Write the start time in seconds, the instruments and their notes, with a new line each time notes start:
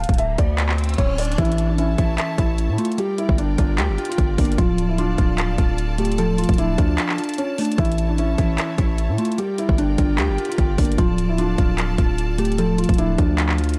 Already playing: riser
0.00 grand piano F5, closed hi-hat
0.09 808-style bass D1, kick, closed hi-hat
0.14 closed hi-hat
0.18 grand piano E5, closed hi-hat
0.38 808-style bass D2, grand piano D5, kick, closed hi-hat
0.58 clap, closed hi-hat
0.69 clap
0.78 closed hi-hat
0.84 closed hi-hat
0.89 closed hi-hat
0.94 closed hi-hat
0.98 808-style bass D1, grand piano C#5, kick, closed hi-hat
1.18 grand piano D5, closed hi-hat, open hi-hat
1.25 closed hi-hat
1.32 closed hi-hat
1.38 808-style bass A1, clean electric guitar E3, string section E4 A4 C#5 A5, grand piano E4, kick, closed hi-hat
1.45 closed hi-hat
1.52 closed hi-hat
1.58 closed hi-hat
1.69 grand piano D4
1.78 clean electric guitar C#4, grand piano E4, closed hi-hat
1.98 808-style bass A1, clean electric guitar E4, kick, closed hi-hat
2.18 clean electric guitar E5, clap, closed hi-hat
2.38 808-style bass A1, clean electric guitar E4, kick, closed hi-hat
2.58 closed hi-hat
2.69 808-style bass A2
2.78 clean electric guitar A3, grand piano F4, closed hi-hat
2.85 closed hi-hat
2.92 closed hi-hat
2.98 clean electric guitar G3, string section F4 A#4 D5 G5, grand piano G4, closed hi-hat
3.18 grand piano E4, closed hi-hat
3.29 808-style bass G1, kick
3.38 clean electric guitar D4, grand piano D4, closed hi-hat
3.58 808-style bass G1, grand piano D4, clean electric guitar F4, kick, closed hi-hat
3.78 808-style bass D2, clean electric guitar G4, grand piano G4, clap, closed hi-hat
3.89 808-style bass G1
3.98 clean electric guitar F4, closed hi-hat
4.05 closed hi-hat
4.09 grand piano F4, closed hi-hat
4.18 808-style bass G1, kick, closed hi-hat
4.38 808-style bass G1, clean electric guitar A#3, grand piano D4, kick, closed hi-hat, open hi-hat
4.45 closed hi-hat
4.52 closed hi-hat
4.58 808-style bass D1, clean electric guitar F3, grand piano F4, string section A4 A5, kick, closed hi-hat
4.78 closed hi-hat
4.89 grand piano E4
4.98 clean electric guitar D4, grand piano F4, closed hi-hat
5.18 808-style bass D1, clean electric guitar F4, kick, closed hi-hat
5.38 clean electric guitar F5, clap, closed hi-hat
5.58 808-style bass D1, clean electric guitar F4, kick, closed hi-hat
5.78 closed hi-hat
5.98 clean electric guitar A3, grand piano G4, closed hi-hat
6.05 closed hi-hat
6.12 closed hi-hat
6.18 clean electric guitar F3, grand piano A4, closed hi-hat
6.38 grand piano F4, closed hi-hat
6.44 closed hi-hat
6.49 808-style bass D1, kick, closed hi-hat
6.54 closed hi-hat
6.58 clean electric guitar D4, grand piano E4, closed hi-hat
6.78 808-style bass D2, grand piano D4, clean electric guitar F4, kick, closed hi-hat
6.98 clean electric guitar F5, clap, closed hi-hat
7.09 clap
7.18 clean electric guitar F4, closed hi-hat
7.24 closed hi-hat
7.29 closed hi-hat
7.34 closed hi-hat
7.38 grand piano C#4, closed hi-hat
7.58 clean electric guitar A3, grand piano D4, closed hi-hat, open hi-hat
7.65 closed hi-hat
7.72 closed hi-hat
7.78 808-style bass A1, clean electric guitar E3, string section E4 A4 C#5, grand piano E4, kick, closed hi-hat
7.85 closed hi-hat
7.92 closed hi-hat
7.98 closed hi-hat
8.09 grand piano D4
8.18 clean electric guitar C#4, grand piano E4, closed hi-hat
8.38 808-style bass A1, clean electric guitar E4, kick, closed hi-hat
8.58 clean electric guitar E5, clap, closed hi-hat
8.78 808-style bass A1, clean electric guitar E4, kick, closed hi-hat
8.98 closed hi-hat
9.09 808-style bass A2
9.18 clean electric guitar A3, grand piano F4, closed hi-hat
9.25 closed hi-hat
9.32 closed hi-hat
9.38 clean electric guitar G3, string section F4 A#4 D5 G5, grand piano G4, closed hi-hat
9.58 grand piano E4, closed hi-hat
9.69 808-style bass G1, kick
9.78 grand piano D4, clean electric guitar D4, closed hi-hat
9.98 808-style bass G1, grand piano D4, clean electric guitar F4, kick, closed hi-hat
10.18 808-style bass D2, clean electric guitar G4, grand piano G4, clap, closed hi-hat
10.29 808-style bass G1
10.38 clean electric guitar F4, closed hi-hat
10.45 grand piano F4, closed hi-hat
10.52 closed hi-hat
10.58 808-style bass G1, kick, closed hi-hat
10.78 808-style bass G1, clean electric guitar A#3, grand piano D4, kick, closed hi-hat, open hi-hat
10.85 closed hi-hat
10.92 closed hi-hat
10.98 808-style bass D1, clean electric guitar F3, grand piano F4, string section A4 A5, kick, closed hi-hat
11.18 closed hi-hat
11.29 grand piano E4
11.38 clean electric guitar D4, grand piano F4, closed hi-hat
11.58 808-style bass D1, clean electric guitar F4, kick, closed hi-hat
11.78 clean electric guitar F5, clap, closed hi-hat
11.98 808-style bass D1, clean electric guitar F4, kick, closed hi-hat
12.18 closed hi-hat
12.38 clean electric guitar A3, grand piano G4, closed hi-hat
12.45 closed hi-hat
12.52 closed hi-hat
12.58 clean electric guitar F3, grand piano A4, closed hi-hat
12.78 grand piano F4, closed hi-hat
12.84 closed hi-hat
12.89 808-style bass D1, kick, closed hi-hat
12.94 closed hi-hat
12.98 clean electric guitar D4, grand piano E4, closed hi-hat
13.18 808-style bass D2, grand piano D4, clean electric guitar F4, kick, closed hi-hat
13.38 clean electric guitar F5, clap, closed hi-hat
13.49 clap
13.58 clean electric guitar F4, closed hi-hat
13.64 closed hi-hat
13.69 closed hi-hat
13.74 closed hi-hat